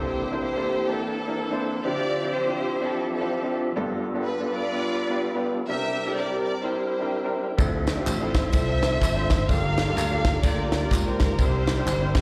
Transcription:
Already playing: upright piano C3 A#3 C4 D4 E4 A4, tonewheel organ E3 A#3 C4 D4 A4, string section E4 G4 C5
0.31 upright piano A#3 C4 D4 E4 C5
0.41 string section E4 G4 C5
0.56 upright piano A#3 C4 D4 E4 A4
0.88 upright piano A#3 C4 D4 E4 A4, string section D4 E4 A4
1.27 upright piano A#3 C4 D4 E4 A#4
1.51 upright piano A#3 C4 D4 E4 C5
1.84 upright piano D3 C4 D4 E4 F4 G4, tonewheel organ F3 C4 D4 G4 E5, string section F4 G4 D5
2.23 upright piano C4 D4 E4 F4 G4
2.33 string section E4 F4 C5
2.47 upright piano C4 D4 E4 F4 G4
2.81 upright piano C4 D4 E4 F4 G4, string section C4 F4 A4
3.11 string section C4 F4 A4
3.20 upright piano C4 D4 E4 F4 G4
3.42 upright piano C4 D4 E4 F4 G4
3.76 upright piano G2 B3 D4 F4 G4 A4, tonewheel organ G3 A3 D4 F4 A4
3.83 tonewheel organ B3
4.14 upright piano B3 D4 F4 G4 A4
4.24 string section B4
4.39 upright piano B3 D4 F4 G4 A4
4.53 string section F4 B4 D5
4.72 upright piano B3 D4 F4 G4 B4
5.09 upright piano B3 D4 F4 G4 B4
5.35 upright piano B3 D4 F4 G4 B4
5.67 upright piano C3 C4 D4 E4 G4 A#4, tonewheel organ G3 C4 D4 E4 A#4, string section G4 A#4 E5
6.06 upright piano C4 D4 E4 G4 A4
6.16 string section D5
6.30 upright piano C4 D4 E4 G4 A#4
6.45 string section D5
6.62 upright piano C4 D4 E4 G4 A#4, string section E4 G4 C5
7.00 upright piano C4 D4 E4 G4 A#4
7.24 upright piano C4 D4 E4 G4 A#4
7.57 slap bass D2, upright piano D3 C4 D4 E4 F4 A4, tonewheel organ F3 C4 D4 A4 E5, kick, ride, tambourine
7.87 snare, ride, tambourine
7.96 upright piano C4 D4 E4 F4 G4
8.06 slap bass A1, string section E4 F4 C5, clap, ride, tambourine
8.20 upright piano C4 D4 E4 F4 A4
8.34 kick, snare, ride, tambourine
8.53 slap bass C2, upright piano C4 D4 E4 F4 A4, string section A4 C5 E5, kick, ride, tambourine
8.83 snare, ride, tambourine
8.91 upright piano C4 D4 E4 F4 A4
9.01 slap bass G#1, kick, clap, ride, tambourine
9.16 upright piano C4 D4 E4 F4 C5
9.30 kick, snare, ride, tambourine
9.48 slap bass G1, upright piano G2 A#3 D4 F4 G4 A4, tonewheel organ G3 A3 D4 F4 G4, string section A4 A#4 F5, kick, ride, tambourine
9.55 tonewheel organ A#3
9.77 snare, ride, tambourine
9.87 upright piano A#3 D4 F4 G4 A4
9.96 slap bass D2, clap, ride, tambourine
10.11 upright piano A#3 D4 F4 G4 A4
10.25 kick, snare, ride, tambourine
10.43 slap bass D2, upright piano A#3 D4 F4 G4 A4, string section F4 A#4 D5, kick, ride, tambourine
10.72 string section D5, snare, ride, tambourine
10.82 upright piano A#3 D4 F4 G4 A#4
10.91 slap bass C#2, string section A#4, kick, clap, ride, tambourine
11.05 upright piano A#3 D4 F4 G4 C5
11.20 string section A#4, kick, snare, ride, tambourine
11.38 slap bass C2, upright piano C3 C4 D4 E4 G4 A#4, tonewheel organ G3 C4 D4 E4 A4, string section E4 G4 C5, kick, ride, tambourine
11.45 tonewheel organ A#4
11.67 snare, ride, tambourine
11.77 upright piano C4 D4 E4 G4 C5
11.86 slap bass G1, string section C5, clap, ride, tambourine
12.00 upright piano C4 D4 E4 G4 C5
12.15 string section C5, kick, snare, ride, tambourine

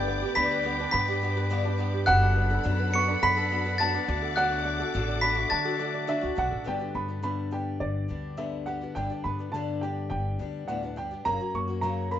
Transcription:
Already playing: upright bass G1, steel-string acoustic guitar G2 D3 G3 B3 D4 G4, kora A3 D4 E4 G4 A4, string section B4 D5 G5 D6, upright piano G5, glockenspiel G6
0.08 kora B3
0.21 steel-string acoustic guitar G3 B3 D4 G4, kora G4
0.35 upright bass D2, steel-string acoustic guitar G2 D3 G3 B3 D4 G4, upright piano B5, glockenspiel B6
0.51 kora B4
0.63 steel-string acoustic guitar G3 B3 D4 G4, kora B3
0.79 steel-string acoustic guitar G3 B3 D4 G4, kora D4
0.91 upright bass G2, kora B3, upright piano B5, glockenspiel B6
1.08 steel-string acoustic guitar G3 B3 D4 G4, kora G4
1.22 steel-string acoustic guitar G3 B3 D4 G4, kora B3
1.35 steel-string acoustic guitar G3 B3 D4 G4, kora B4
1.50 steel-string acoustic guitar G2 D3 G3 B3 D4 G4, kora B3
1.64 steel-string acoustic guitar G3 B3 D4 G4, kora D4
1.78 steel-string acoustic guitar G3 B3 D4 G4, kora B3
1.94 kora G4
2.06 upright bass F#1, steel-string acoustic guitar F#3 B3 D4 A4, kora B3, string section A4 D5 F#5 B5, upright piano F#5, glockenspiel F#6
2.22 kora D4
2.36 kora B3
2.50 steel-string acoustic guitar B3 D4 A4, kora A4
2.63 upright bass F#2, steel-string acoustic guitar F#3 B3 D4 A4
2.79 kora B4
2.92 steel-string acoustic guitar F#3 B3 D4 A4, kora B3, upright piano C#6, glockenspiel C#7
3.07 steel-string acoustic guitar B3 D4 A4, kora D4
3.22 upright bass F#2, kora B3, upright piano B5, glockenspiel B6
3.36 steel-string acoustic guitar B3 D4 A4, kora A4
3.51 steel-string acoustic guitar F#3 B3 D4 A4, kora B3
3.65 steel-string acoustic guitar B3 D4 A4, kora B4
3.78 steel-string acoustic guitar F#3 B3 D4 A4, kora B3, upright piano A5, glockenspiel A6
3.93 steel-string acoustic guitar B3 D4 A4, kora D4
4.07 upright bass D2, steel-string acoustic guitar F#3 A3 D4 F#4, kora D4, string section A4 D6
4.22 kora A4
4.36 steel-string acoustic guitar D3 F#3 A3 D4 F#4, kora D4, upright piano F#5, glockenspiel F#6
4.51 kora F#4
4.65 kora D4
4.80 steel-string acoustic guitar A3 D4 F#4, kora A4
4.94 upright bass A1, steel-string acoustic guitar D3 F#3 A3 D4 F#4
5.08 kora D5
5.21 steel-string acoustic guitar F#3 A3 D4 F#4, kora D4, upright piano B5, glockenspiel B6
5.36 steel-string acoustic guitar A3 D4 F#4, kora F#4
5.50 upright bass D3, kora D4, upright piano A5, glockenspiel A6
5.65 steel-string acoustic guitar A3 D4 F#4, kora A4
5.79 steel-string acoustic guitar F#3 A3 D4 F#4, kora D4
5.94 kora D5
6.07 steel-string acoustic guitar D3 F#3 A3 D4 F#4, kora D4, upright piano E5
6.21 upright bass C#2, steel-string acoustic guitar A3 D4 F#4, kora F#4
6.36 upright bass B1, steel-string acoustic guitar F#3 A3 D4 F#4, kora D4, upright piano F#5
6.51 upright bass A1, kora A4
6.64 upright bass G1, steel-string acoustic guitar G2 D3 G3 B3 D4 G4, upright piano G5
6.79 steel-string acoustic guitar G3 B3 D4 G4
6.95 upright bass G2, steel-string acoustic guitar B3, upright piano B5
7.08 steel-string acoustic guitar G3 B3 D4 G4
7.23 steel-string acoustic guitar G2 D3 G3 B3 D4 G4, upright piano B5
7.51 steel-string acoustic guitar G3 B3 D4 G4, upright piano G5
7.80 upright bass G1, steel-string acoustic guitar D3, upright piano D5
8.08 upright bass D2, steel-string acoustic guitar G3 B3 D4 G4
8.37 steel-string acoustic guitar G2 D3 G3 B3 D4 G4, upright piano E5
8.66 steel-string acoustic guitar G3 B3 D4 G4, upright piano F#5
8.81 steel-string acoustic guitar G3 B3 D4 G4
8.95 upright bass G1, steel-string acoustic guitar G2 D3 G3 B3 D4 G4, upright piano G5
9.10 steel-string acoustic guitar G3 B3 D4 G4
9.24 upright bass G2, steel-string acoustic guitar B3, upright piano B5
9.39 steel-string acoustic guitar G3 B3 D4 G4
9.52 steel-string acoustic guitar G2 D3 G3 B3 D4 G4, upright piano A5
9.81 steel-string acoustic guitar G3 B3 D4 G4, upright piano G5
10.10 upright bass G1, steel-string acoustic guitar D3, upright piano G5
10.39 upright bass D2, steel-string acoustic guitar G3 B3 D4 G4
10.68 steel-string acoustic guitar G2 A2 D3 G3 B3 D4 G4, upright piano F#5
10.83 steel-string acoustic guitar G3 B3 D4 G4
10.96 steel-string acoustic guitar G2 G3 B3 D4 G4, upright piano G5
11.11 steel-string acoustic guitar G3 B3 D4 G4
11.25 upright bass F#1, steel-string acoustic guitar F#2 C#3 F#3 A#3 C#4 F#4 A#4, upright piano A#5
11.40 steel-string acoustic guitar F#3 A#3 C#4 F#4
11.54 upright bass F#2, steel-string acoustic guitar A#3, upright piano C#6
11.68 steel-string acoustic guitar F#3 A#3 C#4 F#4
11.81 steel-string acoustic guitar F#2 C#3 F#3 A#3 C#4 F#4 A#4, upright piano A#5
12.11 steel-string acoustic guitar F#3 A#3 C#4 F#4 A#4, upright piano B5

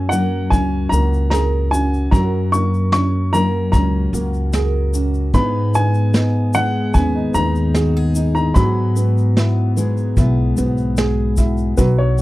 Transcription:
Already playing: upright bass F#2, steel-string acoustic guitar F#2 F#3 C#4 F#4 A#4, felt piano F#3 A#3 C#4, upright piano G#5
0.09 steel-string acoustic guitar F#3 A#4, felt piano A#3, upright piano F#5, closed hi-hat, shaker
0.50 upright bass C#2, felt piano C#4, steel-string acoustic guitar C#4, upright piano G#5, kick, closed hi-hat, shaker
0.89 upright bass C#2, steel-string acoustic guitar C#3 F#4, felt piano A#3, upright piano A#5, closed hi-hat, shaker
1.13 shaker
1.30 felt piano G#4, steel-string acoustic guitar A#4, upright piano A#5, snare, closed hi-hat, shaker
1.71 felt piano C#4, steel-string acoustic guitar F#4, upright piano G#5, closed hi-hat, shaker
1.94 shaker
2.11 upright bass F#2, steel-string acoustic guitar F#2 C#4 F#4 A#4, felt piano F#3, upright piano A#5, kick, closed hi-hat, shaker
2.52 felt piano A#3, upright piano C#6, closed hi-hat, shaker
2.74 shaker
2.92 steel-string acoustic guitar C#4, felt piano C#4, upright piano C#6, snare, closed hi-hat, shaker
3.33 steel-string acoustic guitar F#3 A#4, felt piano A#3, upright piano A#5, closed hi-hat, shaker
3.72 upright bass C#2, steel-string acoustic guitar C#4, felt piano C#4, upright piano A#5, kick, closed hi-hat, shaker
4.13 upright bass C#2, steel-string acoustic guitar C#3 F#4, felt piano A#3, closed hi-hat, shaker
4.34 shaker
4.53 felt piano G#4, steel-string acoustic guitar A#4, snare, closed hi-hat, shaker
4.93 felt piano C#4, steel-string acoustic guitar F#4, closed hi-hat, shaker
5.14 shaker
5.33 steel-string acoustic guitar G#2 B3 D#4 G#4, upright bass G#2, felt piano B3, upright piano B5, kick, closed hi-hat, shaker
5.74 felt piano B3, upright piano G#5, closed hi-hat, shaker
5.94 shaker
6.14 steel-string acoustic guitar B3, felt piano D#4, snare, closed hi-hat, shaker
6.53 steel-string acoustic guitar G#3 G#4, felt piano B3, upright piano F#5, closed hi-hat, shaker
6.94 upright bass D#2, steel-string acoustic guitar B3, felt piano C#4, upright piano G#5, kick, closed hi-hat, shaker
7.15 felt piano D#4
7.34 upright bass D#2, steel-string acoustic guitar D#3 D#4, felt piano B3, upright piano A#5, closed hi-hat, shaker
7.55 shaker
7.74 steel-string acoustic guitar F#4, felt piano G#4, snare, closed hi-hat, shaker
7.97 steel-string acoustic guitar G#4
8.15 felt piano D#4, steel-string acoustic guitar D#4, closed hi-hat, shaker
8.35 upright piano A#5, shaker
8.54 steel-string acoustic guitar G#2 B3 F#4 G#4, upright bass G#2, felt piano F#3, upright piano B5, kick, closed hi-hat, shaker
8.96 felt piano B3, closed hi-hat, shaker
9.18 shaker
9.37 steel-string acoustic guitar B3, felt piano E4, snare, closed hi-hat, shaker
9.76 steel-string acoustic guitar G#3 G#4, felt piano B3, closed hi-hat, shaker
9.97 shaker
10.17 upright bass B1, steel-string acoustic guitar B3, felt piano E4, kick, closed hi-hat, shaker
10.57 upright bass B1, steel-string acoustic guitar G#2 F#4, felt piano B3, closed hi-hat, shaker
10.77 shaker
10.97 felt piano G#4, steel-string acoustic guitar G#4, snare, closed hi-hat, shaker
11.37 felt piano E4, steel-string acoustic guitar F#4, kick, closed hi-hat, shaker
11.57 shaker
11.77 upright bass B1, steel-string acoustic guitar B2, felt piano F#3, upright piano B4, kick, closed hi-hat, shaker
11.98 upright piano C#5
12.18 felt piano F#3, shaker

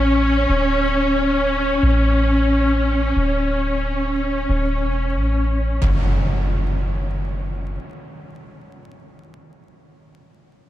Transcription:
Already playing: 808-style bass A1, string section C#4, synth texture C#4 C#5
0.49 808-style bass D1
1.83 808-style bass A1
3.17 808-style bass D1
4.49 808-style bass D1
4.83 808-style bass E1
5.16 808-style bass A1
5.82 808-style bass F#1, impact

